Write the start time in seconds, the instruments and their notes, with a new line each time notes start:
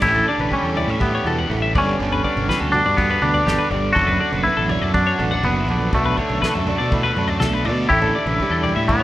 Already playing: clean electric guitar D3
0.01 fingered electric bass A1, clean electric guitar A2 E4 G4, overdriven electric guitar A2 E3 G3 C#4 G4, kick, floor tom, crash
0.15 clean electric guitar A4, floor tom
0.25 clean electric guitar D3 D4 D5, overdriven electric guitar G3 C#4 G4
0.38 fingered electric bass A1, clean electric guitar B4, mid tom
0.51 overdriven electric guitar E3 G3 C#4 G4, clean electric guitar G3 C#4, kick
0.63 fingered electric bass E2, clean electric guitar A4
0.76 overdriven electric guitar G3 C#4 G4, clean electric guitar E4 D5, floor tom, mid tom
0.87 fingered electric bass A2, clean electric guitar E5, floor tom
0.99 overdriven electric guitar A2 E3 G3 C#4 G4, clean electric guitar B3 G4, kick, floor tom
1.15 clean electric guitar C#5
1.24 fingered electric bass E2, clean electric guitar B2 A4, overdriven electric guitar G3 C#4 G4, mid tom
1.39 clean electric guitar F#5, floor tom
1.49 fingered electric bass A1, clean electric guitar A2, overdriven electric guitar E3 G3 C#4 G4, floor tom, mid tom
1.62 clean electric guitar E5
1.75 fingered electric bass G1, clean electric guitar G2 D3 B3 C#4 D5, overdriven electric guitar G3 B3 D4 G4, kick, floor tom
1.97 fingered electric bass G1, clean electric guitar D3, overdriven electric guitar G3 B3 D4 G4, floor tom
2.12 clean electric guitar B4, floor tom
2.23 clean electric guitar B3 D5, overdriven electric guitar B3 D4 G4, kick
2.36 fingered electric bass G1, mid tom
2.48 overdriven electric guitar G3 B3 D4 G4, clean electric guitar E4 B4, kick, snare
2.60 fingered electric bass D2, clean electric guitar F#4 A4, floor tom
2.72 overdriven electric guitar B3 D4 G4, clean electric guitar D4 F#4, floor tom, mid tom
2.85 fingered electric bass G2, clean electric guitar D5, floor tom
2.96 overdriven electric guitar G3 B3 D4 G4, clean electric guitar B3, kick, floor tom
3.10 clean electric guitar B4, floor tom
3.21 fingered electric bass D2, overdriven electric guitar B3 D4 G4, clean electric guitar B3 D4, mid tom
3.34 clean electric guitar D5, floor tom
3.46 fingered electric bass G1, clean electric guitar D3 G4, overdriven electric guitar G3 B3 D4 G4, snare, floor tom, mid tom
3.59 clean electric guitar B4
3.70 fingered electric bass G1, clean electric guitar G2 D5, floor tom
3.93 fingered electric bass F#1, clean electric guitar F#2 F#4 A4, overdriven electric guitar F#3 A3 D4 F#4, kick, floor tom
4.07 clean electric guitar B4, floor tom
4.20 clean electric guitar D3 D5, overdriven electric guitar A3 D4 F#4
4.32 fingered electric bass F#1, clean electric guitar B4, mid tom
4.44 overdriven electric guitar F#3 A3 D4 F#4, clean electric guitar B3 E4, kick
4.57 fingered electric bass A1, clean electric guitar A4
4.69 overdriven electric guitar A3 D4 F#4, clean electric guitar D4 C#5, floor tom, mid tom
4.82 fingered electric bass F#2, clean electric guitar D5, floor tom
4.94 overdriven electric guitar F#3 A3 D4 F#4, clean electric guitar D4 F#4, kick, floor tom
5.07 clean electric guitar C#5
5.18 fingered electric bass A1, overdriven electric guitar A3 D4 F#4, clean electric guitar B3 A4, mid tom
5.31 clean electric guitar D4 F#5, floor tom
5.43 fingered electric bass F#1, overdriven electric guitar F#3 A3 D4 F#4, clean electric guitar B3, floor tom, mid tom
5.55 clean electric guitar E5
5.68 fingered electric bass A#1, clean electric guitar D3 D5, floor tom
5.92 fingered electric bass B1, overdriven electric guitar B2 F#3 B3 D4 F#4, clean electric guitar B2 A3, kick, floor tom
6.05 clean electric guitar B4, floor tom
6.17 clean electric guitar D3 C#5, overdriven electric guitar B3 D4 F#4, kick
6.30 fingered electric bass B1, mid tom
6.42 overdriven electric guitar F#3 B3 D4 F#4, clean electric guitar A3 B4, kick, snare
6.54 fingered electric bass F#2, clean electric guitar A4, floor tom
6.66 overdriven electric guitar B3 D4 F#4, clean electric guitar D4, floor tom, mid tom
6.78 fingered electric bass B2, clean electric guitar D5, floor tom
6.91 overdriven electric guitar B2 F#3 B3 D4 F#4, clean electric guitar E4, kick, floor tom
7.03 clean electric guitar F#4 B4, floor tom
7.16 fingered electric bass F#2, overdriven electric guitar B3 D4 F#4, clean electric guitar D4, mid tom
7.28 clean electric guitar D5, floor tom
7.40 fingered electric bass B1, overdriven electric guitar F#3 B3 D4 F#4, clean electric guitar A3 A4, snare, floor tom, mid tom
7.53 clean electric guitar B4
7.65 fingered electric bass B2, clean electric guitar D3 D5, floor tom
7.88 fingered electric bass A1, overdriven electric guitar A2 E3 G3 C#4 G4, clean electric guitar E4 G4, kick, floor tom
7.93 clean electric guitar A2
8.02 clean electric guitar A4, floor tom
8.15 clean electric guitar D3 D5, overdriven electric guitar G3 C#4 G4
8.26 fingered electric bass A1, clean electric guitar B4, mid tom
8.39 overdriven electric guitar E3 G3 C#4 G4, clean electric guitar G3, kick
8.50 fingered electric bass E2, clean electric guitar A4
8.63 overdriven electric guitar G3 C#4 G4, clean electric guitar D5, floor tom, mid tom
8.76 fingered electric bass A2, clean electric guitar E5, floor tom
8.88 overdriven electric guitar A2 E3 G3 C#4 G4, clean electric guitar B3 E4, kick, floor tom
9.00 clean electric guitar C#5